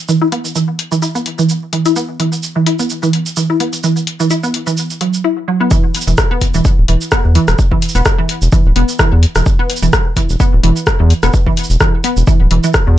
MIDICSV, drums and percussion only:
0, 0, Header, 1, 2, 480
1, 0, Start_track
1, 0, Tempo, 468750
1, 89, Time_signature, 4, 2, 24, 8
1, 13299, End_track
2, 0, Start_track
2, 0, Title_t, "Drums"
2, 89, Note_on_c, 9, 69, 48
2, 191, Note_off_c, 9, 69, 0
2, 330, Note_on_c, 9, 42, 76
2, 432, Note_off_c, 9, 42, 0
2, 461, Note_on_c, 9, 69, 36
2, 563, Note_off_c, 9, 69, 0
2, 569, Note_on_c, 9, 69, 50
2, 672, Note_off_c, 9, 69, 0
2, 808, Note_on_c, 9, 42, 87
2, 911, Note_off_c, 9, 42, 0
2, 940, Note_on_c, 9, 69, 39
2, 1043, Note_off_c, 9, 69, 0
2, 1048, Note_on_c, 9, 69, 45
2, 1151, Note_off_c, 9, 69, 0
2, 1181, Note_on_c, 9, 69, 28
2, 1283, Note_off_c, 9, 69, 0
2, 1289, Note_on_c, 9, 42, 81
2, 1391, Note_off_c, 9, 42, 0
2, 1421, Note_on_c, 9, 69, 38
2, 1523, Note_off_c, 9, 69, 0
2, 1529, Note_on_c, 9, 69, 48
2, 1632, Note_off_c, 9, 69, 0
2, 1769, Note_on_c, 9, 42, 78
2, 1872, Note_off_c, 9, 42, 0
2, 1900, Note_on_c, 9, 42, 34
2, 1900, Note_on_c, 9, 69, 37
2, 2003, Note_off_c, 9, 42, 0
2, 2003, Note_off_c, 9, 69, 0
2, 2009, Note_on_c, 9, 69, 52
2, 2111, Note_off_c, 9, 69, 0
2, 2249, Note_on_c, 9, 42, 79
2, 2352, Note_off_c, 9, 42, 0
2, 2381, Note_on_c, 9, 69, 39
2, 2483, Note_off_c, 9, 69, 0
2, 2489, Note_on_c, 9, 69, 52
2, 2591, Note_off_c, 9, 69, 0
2, 2729, Note_on_c, 9, 42, 84
2, 2831, Note_off_c, 9, 42, 0
2, 2860, Note_on_c, 9, 69, 39
2, 2962, Note_off_c, 9, 69, 0
2, 2969, Note_on_c, 9, 69, 49
2, 3071, Note_off_c, 9, 69, 0
2, 3101, Note_on_c, 9, 69, 28
2, 3203, Note_off_c, 9, 69, 0
2, 3208, Note_on_c, 9, 42, 83
2, 3310, Note_off_c, 9, 42, 0
2, 3340, Note_on_c, 9, 69, 41
2, 3442, Note_off_c, 9, 69, 0
2, 3448, Note_on_c, 9, 69, 53
2, 3550, Note_off_c, 9, 69, 0
2, 3688, Note_on_c, 9, 42, 78
2, 3790, Note_off_c, 9, 42, 0
2, 3820, Note_on_c, 9, 42, 33
2, 3820, Note_on_c, 9, 69, 41
2, 3922, Note_off_c, 9, 42, 0
2, 3922, Note_off_c, 9, 69, 0
2, 3928, Note_on_c, 9, 69, 50
2, 4030, Note_off_c, 9, 69, 0
2, 4060, Note_on_c, 9, 69, 28
2, 4163, Note_off_c, 9, 69, 0
2, 4169, Note_on_c, 9, 42, 78
2, 4271, Note_off_c, 9, 42, 0
2, 4300, Note_on_c, 9, 69, 40
2, 4403, Note_off_c, 9, 69, 0
2, 4408, Note_on_c, 9, 69, 52
2, 4511, Note_off_c, 9, 69, 0
2, 4541, Note_on_c, 9, 69, 28
2, 4643, Note_off_c, 9, 69, 0
2, 4649, Note_on_c, 9, 42, 84
2, 4751, Note_off_c, 9, 42, 0
2, 4781, Note_on_c, 9, 69, 40
2, 4883, Note_off_c, 9, 69, 0
2, 4888, Note_on_c, 9, 69, 52
2, 4991, Note_off_c, 9, 69, 0
2, 5021, Note_on_c, 9, 69, 29
2, 5124, Note_off_c, 9, 69, 0
2, 5129, Note_on_c, 9, 42, 84
2, 5231, Note_off_c, 9, 42, 0
2, 5261, Note_on_c, 9, 69, 42
2, 5363, Note_off_c, 9, 69, 0
2, 5849, Note_on_c, 9, 36, 110
2, 5849, Note_on_c, 9, 69, 54
2, 5951, Note_off_c, 9, 36, 0
2, 5951, Note_off_c, 9, 69, 0
2, 6088, Note_on_c, 9, 42, 87
2, 6088, Note_on_c, 9, 69, 41
2, 6154, Note_off_c, 9, 69, 0
2, 6154, Note_on_c, 9, 69, 50
2, 6191, Note_off_c, 9, 42, 0
2, 6221, Note_off_c, 9, 69, 0
2, 6221, Note_on_c, 9, 69, 44
2, 6323, Note_off_c, 9, 69, 0
2, 6328, Note_on_c, 9, 37, 98
2, 6328, Note_on_c, 9, 69, 56
2, 6329, Note_on_c, 9, 36, 119
2, 6431, Note_off_c, 9, 36, 0
2, 6431, Note_off_c, 9, 37, 0
2, 6431, Note_off_c, 9, 69, 0
2, 6569, Note_on_c, 9, 36, 61
2, 6569, Note_on_c, 9, 42, 100
2, 6569, Note_on_c, 9, 69, 32
2, 6671, Note_off_c, 9, 36, 0
2, 6671, Note_off_c, 9, 42, 0
2, 6671, Note_off_c, 9, 69, 0
2, 6700, Note_on_c, 9, 69, 45
2, 6802, Note_off_c, 9, 69, 0
2, 6808, Note_on_c, 9, 69, 52
2, 6809, Note_on_c, 9, 36, 119
2, 6910, Note_off_c, 9, 69, 0
2, 6912, Note_off_c, 9, 36, 0
2, 7048, Note_on_c, 9, 42, 90
2, 7150, Note_off_c, 9, 42, 0
2, 7180, Note_on_c, 9, 69, 45
2, 7282, Note_off_c, 9, 69, 0
2, 7288, Note_on_c, 9, 37, 100
2, 7288, Note_on_c, 9, 69, 56
2, 7289, Note_on_c, 9, 36, 116
2, 7391, Note_off_c, 9, 37, 0
2, 7391, Note_off_c, 9, 69, 0
2, 7392, Note_off_c, 9, 36, 0
2, 7529, Note_on_c, 9, 42, 91
2, 7529, Note_on_c, 9, 69, 30
2, 7631, Note_off_c, 9, 42, 0
2, 7631, Note_off_c, 9, 69, 0
2, 7660, Note_on_c, 9, 37, 64
2, 7660, Note_on_c, 9, 42, 38
2, 7660, Note_on_c, 9, 69, 43
2, 7763, Note_off_c, 9, 37, 0
2, 7763, Note_off_c, 9, 42, 0
2, 7763, Note_off_c, 9, 69, 0
2, 7769, Note_on_c, 9, 36, 116
2, 7769, Note_on_c, 9, 69, 55
2, 7872, Note_off_c, 9, 36, 0
2, 7872, Note_off_c, 9, 69, 0
2, 7901, Note_on_c, 9, 36, 65
2, 8004, Note_off_c, 9, 36, 0
2, 8010, Note_on_c, 9, 42, 97
2, 8010, Note_on_c, 9, 69, 39
2, 8075, Note_off_c, 9, 69, 0
2, 8075, Note_on_c, 9, 69, 51
2, 8112, Note_off_c, 9, 42, 0
2, 8141, Note_off_c, 9, 69, 0
2, 8141, Note_on_c, 9, 69, 44
2, 8244, Note_off_c, 9, 69, 0
2, 8249, Note_on_c, 9, 37, 96
2, 8249, Note_on_c, 9, 69, 55
2, 8250, Note_on_c, 9, 36, 126
2, 8351, Note_off_c, 9, 37, 0
2, 8351, Note_off_c, 9, 69, 0
2, 8352, Note_off_c, 9, 36, 0
2, 8489, Note_on_c, 9, 42, 105
2, 8489, Note_on_c, 9, 69, 30
2, 8592, Note_off_c, 9, 42, 0
2, 8592, Note_off_c, 9, 69, 0
2, 8621, Note_on_c, 9, 69, 44
2, 8723, Note_off_c, 9, 69, 0
2, 8728, Note_on_c, 9, 69, 53
2, 8730, Note_on_c, 9, 36, 127
2, 8831, Note_off_c, 9, 69, 0
2, 8832, Note_off_c, 9, 36, 0
2, 8968, Note_on_c, 9, 42, 98
2, 9071, Note_off_c, 9, 42, 0
2, 9101, Note_on_c, 9, 69, 44
2, 9203, Note_off_c, 9, 69, 0
2, 9209, Note_on_c, 9, 36, 127
2, 9209, Note_on_c, 9, 37, 100
2, 9209, Note_on_c, 9, 69, 56
2, 9312, Note_off_c, 9, 36, 0
2, 9312, Note_off_c, 9, 37, 0
2, 9312, Note_off_c, 9, 69, 0
2, 9449, Note_on_c, 9, 42, 92
2, 9449, Note_on_c, 9, 69, 27
2, 9552, Note_off_c, 9, 42, 0
2, 9552, Note_off_c, 9, 69, 0
2, 9581, Note_on_c, 9, 37, 65
2, 9581, Note_on_c, 9, 42, 38
2, 9581, Note_on_c, 9, 69, 45
2, 9684, Note_off_c, 9, 37, 0
2, 9684, Note_off_c, 9, 42, 0
2, 9684, Note_off_c, 9, 69, 0
2, 9689, Note_on_c, 9, 36, 125
2, 9689, Note_on_c, 9, 69, 51
2, 9791, Note_off_c, 9, 69, 0
2, 9792, Note_off_c, 9, 36, 0
2, 9929, Note_on_c, 9, 42, 99
2, 9929, Note_on_c, 9, 69, 37
2, 9995, Note_off_c, 9, 69, 0
2, 9995, Note_on_c, 9, 69, 49
2, 10032, Note_off_c, 9, 42, 0
2, 10061, Note_off_c, 9, 69, 0
2, 10061, Note_on_c, 9, 69, 41
2, 10163, Note_off_c, 9, 69, 0
2, 10170, Note_on_c, 9, 36, 118
2, 10170, Note_on_c, 9, 37, 97
2, 10170, Note_on_c, 9, 69, 52
2, 10272, Note_off_c, 9, 36, 0
2, 10272, Note_off_c, 9, 37, 0
2, 10272, Note_off_c, 9, 69, 0
2, 10410, Note_on_c, 9, 36, 61
2, 10410, Note_on_c, 9, 42, 99
2, 10410, Note_on_c, 9, 69, 30
2, 10512, Note_off_c, 9, 36, 0
2, 10513, Note_off_c, 9, 42, 0
2, 10513, Note_off_c, 9, 69, 0
2, 10542, Note_on_c, 9, 69, 43
2, 10645, Note_off_c, 9, 69, 0
2, 10650, Note_on_c, 9, 36, 121
2, 10651, Note_on_c, 9, 69, 52
2, 10752, Note_off_c, 9, 36, 0
2, 10753, Note_off_c, 9, 69, 0
2, 10890, Note_on_c, 9, 42, 101
2, 10993, Note_off_c, 9, 42, 0
2, 11022, Note_on_c, 9, 69, 42
2, 11124, Note_off_c, 9, 69, 0
2, 11129, Note_on_c, 9, 36, 127
2, 11130, Note_on_c, 9, 37, 98
2, 11130, Note_on_c, 9, 69, 51
2, 11232, Note_off_c, 9, 36, 0
2, 11232, Note_off_c, 9, 37, 0
2, 11232, Note_off_c, 9, 69, 0
2, 11369, Note_on_c, 9, 42, 90
2, 11369, Note_on_c, 9, 69, 28
2, 11471, Note_off_c, 9, 42, 0
2, 11471, Note_off_c, 9, 69, 0
2, 11500, Note_on_c, 9, 37, 61
2, 11500, Note_on_c, 9, 42, 38
2, 11500, Note_on_c, 9, 69, 41
2, 11602, Note_off_c, 9, 37, 0
2, 11602, Note_off_c, 9, 42, 0
2, 11602, Note_off_c, 9, 69, 0
2, 11609, Note_on_c, 9, 36, 123
2, 11609, Note_on_c, 9, 69, 52
2, 11711, Note_off_c, 9, 36, 0
2, 11711, Note_off_c, 9, 69, 0
2, 11741, Note_on_c, 9, 36, 63
2, 11843, Note_off_c, 9, 36, 0
2, 11849, Note_on_c, 9, 42, 92
2, 11849, Note_on_c, 9, 69, 36
2, 11915, Note_off_c, 9, 69, 0
2, 11915, Note_on_c, 9, 69, 46
2, 11952, Note_off_c, 9, 42, 0
2, 11981, Note_off_c, 9, 69, 0
2, 11981, Note_on_c, 9, 69, 38
2, 12084, Note_off_c, 9, 69, 0
2, 12089, Note_on_c, 9, 36, 121
2, 12089, Note_on_c, 9, 37, 90
2, 12089, Note_on_c, 9, 69, 52
2, 12191, Note_off_c, 9, 36, 0
2, 12191, Note_off_c, 9, 37, 0
2, 12191, Note_off_c, 9, 69, 0
2, 12329, Note_on_c, 9, 42, 104
2, 12329, Note_on_c, 9, 69, 29
2, 12432, Note_off_c, 9, 42, 0
2, 12432, Note_off_c, 9, 69, 0
2, 12460, Note_on_c, 9, 69, 42
2, 12562, Note_off_c, 9, 69, 0
2, 12568, Note_on_c, 9, 69, 48
2, 12569, Note_on_c, 9, 36, 127
2, 12670, Note_off_c, 9, 69, 0
2, 12671, Note_off_c, 9, 36, 0
2, 12807, Note_on_c, 9, 42, 96
2, 12910, Note_off_c, 9, 42, 0
2, 12940, Note_on_c, 9, 69, 41
2, 13042, Note_off_c, 9, 69, 0
2, 13048, Note_on_c, 9, 37, 91
2, 13048, Note_on_c, 9, 69, 48
2, 13049, Note_on_c, 9, 36, 127
2, 13150, Note_off_c, 9, 37, 0
2, 13150, Note_off_c, 9, 69, 0
2, 13151, Note_off_c, 9, 36, 0
2, 13299, End_track
0, 0, End_of_file